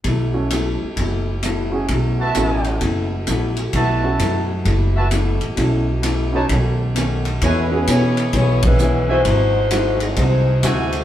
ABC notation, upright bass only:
X:1
M:4/4
L:1/8
Q:"Swing" 1/4=130
K:Bmix
V:1 name="Upright bass" clef=bass
B,,,3 z F,,,4 | B,,,2 A,,,2 F,,,2 ^A,,,2 | B,,,2 F,,2 F,,,3 A,,, | B,,,4 B,,,4 |
E,,2 B,,2 B,,,4 | G,,,4 ^B,,,2 =D,,2 |]